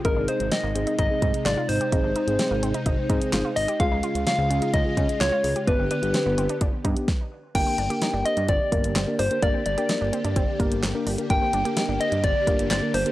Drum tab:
CC |----------------|----------------|----------------|----------------|
HH |x-xxx-xxx-xxx-ox|x-xxx-xxx-xxx-ox|x-xxx-xxx-xxx-ox|x-xxx-xxx-xx----|
CP |------------x---|------------x---|------------x---|----------------|
SD |----o-------o---|----o-------o---|----o-------o---|----o-------o---|
BD |o-------o-o-----|o-------o-o-----|o-------o-o-----|o-------o-o-o---|

CC |x---------------|----------------|----------------|
HH |x-xxx-xxx-xxx-ox|x-xxx-xxx-xxx-ox|x-xxx-xxx-xxx-ox|
CP |------------x---|------------x---|------------x---|
SD |----o-------o---|----o-------o---|----o-------o---|
BD |o-------o-o-----|o-------o-o-----|o-------o-o-----|